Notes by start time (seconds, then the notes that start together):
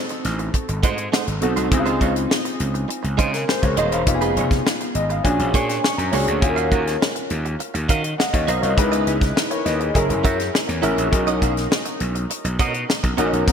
Already playing: C4 D#4 F#4 A4
0.09 muted clean electric guitar stroke, closed hi-hat
0.24 A1, snare, closed hi-hat
0.39 muted clean electric guitar stroke, closed hi-hat
0.54 muted clean electric guitar stroke, kick, closed hi-hat
0.69 G#1, muted clean electric guitar stroke, closed hi-hat
0.83 G#2 A3 D#4 F#4 C5, kick, closed hi-hat
0.98 muted clean electric guitar stroke, closed hi-hat
1.12 A3 D#4 F#4 C5, snare
1.27 G#1, muted clean electric guitar stroke, closed hi-hat
1.41 B1 C4 D#4 F#4 A4, muted clean electric guitar stroke, closed hi-hat
1.56 C2 A3 D#4 F#4 C5, closed hi-hat
1.71 C#2 C4 D#4 E4 G#4, muted clean electric guitar stroke, kick, closed hi-hat
1.79 F4
1.86 G#3 D#4 F4 C5, closed hi-hat
2.00 C#2 G#3 D#4 F4 C#5, kick, closed hi-hat
2.15 muted clean electric guitar stroke, closed hi-hat
2.30 muted clean electric guitar stroke, snare
2.45 muted clean electric guitar stroke, closed hi-hat
2.60 C#2, closed hi-hat
2.74 muted clean electric guitar stroke, closed hi-hat
2.88 muted clean electric guitar stroke, closed hi-hat
3.03 C#2, muted clean electric guitar stroke, closed hi-hat
3.17 C#3 G#3 D#4 F4 C5, kick, closed hi-hat
3.33 A#4, muted clean electric guitar stroke, snare, closed hi-hat
3.48 G#4 C5, muted clean electric guitar stroke, snare
3.62 C#2 A#4 C#5, muted clean electric guitar stroke, kick, closed hi-hat
3.77 D#1 G#3 D#4 F4 C5 D#5, closed hi-hat
3.92 E1 G#3 D#4 F4 C5 C#5 F5, closed hi-hat
4.06 F1 B3 D#4 F4 G4, muted clean electric guitar stroke, kick, closed hi-hat
4.14 G#4
4.21 B3 D#4 G#4 B4, closed hi-hat
4.36 F1 B3 D#4 G#4 C#5, closed hi-hat
4.51 muted clean electric guitar stroke, kick, snare, closed hi-hat
4.66 muted clean electric guitar stroke, snare
4.80 muted clean electric guitar stroke, closed hi-hat
4.95 G#1 D#5, closed hi-hat
5.10 F5, muted clean electric guitar stroke, closed hi-hat
5.24 A#1 C#4 D4 F#4 G#4 G#5, muted clean electric guitar stroke, kick, closed hi-hat
5.39 A#1, muted clean electric guitar stroke, closed hi-hat
5.54 A#2 A#3 D4 G#4 C#5, kick, closed hi-hat
5.69 A#3 D4 G#4 C#5 G#5, snare, closed hi-hat
5.84 C#6, snare
5.98 F#2 A#5, muted clean electric guitar stroke, closed hi-hat
6.12 C#2 A#3 C#4 D4 F#4 G#4 C#5, open hi-hat
6.27 D2 A#3 D4 G#4 C#5, closed hi-hat
6.41 D#2 C#4 F4 F#4 G#4, muted clean electric guitar stroke, kick, closed hi-hat
6.49 A#4
6.56 C#4 F#4 A#4 F5, closed hi-hat
6.71 D#2 C#4 F#4 A#4 F#5, kick, closed hi-hat
6.86 muted clean electric guitar stroke, snare, closed hi-hat
7.01 muted clean electric guitar stroke, snare
7.15 muted clean electric guitar stroke, closed hi-hat
7.30 D#2, closed hi-hat
7.45 muted clean electric guitar stroke, closed hi-hat
7.60 muted clean electric guitar stroke, closed hi-hat
7.74 D#2, muted clean electric guitar stroke, closed hi-hat
7.89 D#3 C#4 F#4 A#4 F5, kick, closed hi-hat
8.04 muted clean electric guitar stroke, closed hi-hat
8.18 D#5 F#5, muted clean electric guitar stroke, snare
8.33 D#2 C#5 F5, muted clean electric guitar stroke, kick, closed hi-hat
8.47 B1 C#4 F#4 A#4 C5 D#5 F5, closed hi-hat
8.62 C2 C#4 F#4 A#4 C#5 F5, closed hi-hat
8.77 C#2 D#4 E4 G#4 B4, muted clean electric guitar stroke, kick, closed hi-hat
8.92 B3 E4 G#4 D#5, closed hi-hat
9.06 C#2 B3 E4 G#4 E5, closed hi-hat
9.21 muted clean electric guitar stroke, kick, snare, closed hi-hat
9.36 muted clean electric guitar stroke, snare
9.50 A#4 C#5, muted clean electric guitar stroke, closed hi-hat
9.65 D#2 B4 D#5, snare, closed hi-hat
9.80 G#4 B4, muted clean electric guitar stroke, closed hi-hat
9.94 F#1 C#4 E4 G#4 A#4, muted clean electric guitar stroke, kick, closed hi-hat
10.09 F#1, muted clean electric guitar stroke, closed hi-hat
10.24 F#2 C#4 F#4 A#4 E5, kick, closed hi-hat
10.39 muted clean electric guitar stroke, snare, closed hi-hat
10.53 muted clean electric guitar stroke, snare
10.68 E2, muted clean electric guitar stroke, closed hi-hat
10.82 A1 C#4 E4 F#4 G#4 A#4 E5, closed hi-hat
10.97 A#1 C#4 F#4 A#4 E5, closed hi-hat
11.11 B1 C#4 D#4 F#4 A#4, kick, closed hi-hat
11.27 C#4 F#4 A#4 D#5, closed hi-hat
11.42 B1 C#4 F#4 A#4 F5, kick, closed hi-hat
11.56 muted clean electric guitar stroke, snare, closed hi-hat
11.71 muted clean electric guitar stroke, snare
11.85 muted clean electric guitar stroke, closed hi-hat
12.00 B1, closed hi-hat
12.15 muted clean electric guitar stroke, closed hi-hat
12.30 muted clean electric guitar stroke, closed hi-hat
12.44 B1, muted clean electric guitar stroke, closed hi-hat
12.59 B2 C#4 F#4 A#4 D#5, kick, closed hi-hat
12.74 muted clean electric guitar stroke, closed hi-hat
12.89 muted clean electric guitar stroke, snare
13.03 B1, muted clean electric guitar stroke, kick, closed hi-hat
13.17 A#1 C#4 D#4 F#4 A#4 D#5, closed hi-hat
13.32 B1 C#4 F#4 A#4 D#5, closed hi-hat
13.47 C2 C4 D#4 F#4 A#4, kick, closed hi-hat